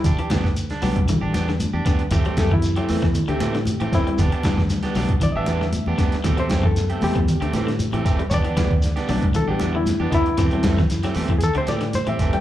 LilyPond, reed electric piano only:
<<
  \new Staff \with { instrumentName = "Reed electric piano" } { \time 4/4 \key a \dorian \tempo 4 = 116 r1 | r8 a'16 e'4. g'4~ g'16 <c' e'>8 | r2 d''16 <dis'' e''>4.~ <dis'' e''>16~ | <dis'' e''>16 c''8 a'8. g'2 r8 |
<cis'' d''>2 a'16 g'8 e'8. <dis' e'>8~ | <dis' e'>4. r8 <gis' a'>16 c''16 d''8 c''16 e''8 g''16 | }
  \new Staff \with { instrumentName = "Reed electric piano" } { \clef bass \time 4/4 \key a \dorian r4. <fis g d'>2~ <fis g d'>8 | r8 <c b g'>8 r2. | r8 <fis g d'>2.~ <fis g d'>8 | <c a b>4. <c g b>8 r2 |
r4. <fis g d'>2~ <fis g d'>8 | <g b c'>8 r2. r8 | }
>>